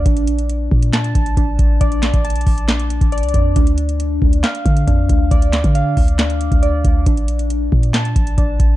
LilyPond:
<<
  \new Staff \with { instrumentName = "Synth keys" } { \time 4/4 \key bes \lydian \tempo 4 = 137 d'2 a''4 d'4 | d''4 a''4 d'4 d''4 | d'2 f''4 d'4 | d''4 f''4 d'4 d''4 |
d'2 a''4 d'4 | }
  \new Staff \with { instrumentName = "808-style bass" } { \clef bass \time 4/4 \key bes \lydian bes,,4. bes,4 bes,,8 bes,,8 a,,8 | bes,,8. bes,,8. bes,,4~ bes,,16 bes,,8 c,16 f,8 | d,4. d,8 r8 d8 f,8 d,8 | d,8. d8. d,4~ d,16 d,8. d,8 |
bes,,4. bes,4 bes,,8 bes,,8 a,,8 | }
  \new DrumStaff \with { instrumentName = "Drums" } \drummode { \time 4/4 <hh bd>16 hh16 hh16 hh16 hh8 bd16 hh16 <hc hh sn>16 hh16 <hh bd>16 hh16 <hh bd>8 <hh bd>8 | <hh bd>16 hh16 <hc hh sn>16 <hh bd>16 hh32 hh32 hh32 hh32 <hho bd>16 hh16 <hc hh sn>16 hh16 hh16 <hh bd>16 hh32 hh32 hh32 hh32 <hh bd>8 | <hh bd>16 hh16 hh16 hh16 hh8 bd16 hh16 <hc hh sn>16 hh16 <hh bd>16 hh16 <hh bd>8 <hh bd>8 | <hh bd>16 hh16 <hc hh sn>16 <hh bd>16 hh8 <hho bd>16 hh16 <hc hh sn>16 hh16 hh16 <hh bd>16 hh8 <hh bd>8 |
<hh bd>16 hh16 hh16 hh16 hh8 bd16 hh16 <hc hh sn>16 hh16 <hh bd>16 hh16 <hh bd>8 <hh bd>8 | }
>>